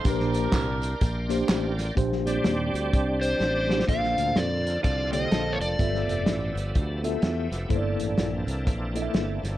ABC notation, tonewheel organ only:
X:1
M:4/4
L:1/8
Q:"Swing" 1/4=126
K:Bb
V:1 name="Tonewheel organ"
[Bdgc']8 | z [G,CD]6- [G,CD] | [D,B,CA]8 | [A,=B,G=e]8 |
[B,CDA]8 |]
V:2 name="Tonewheel organ" clef=bass
z8 | z8 | F,8- | F,8 |
=E,8 |]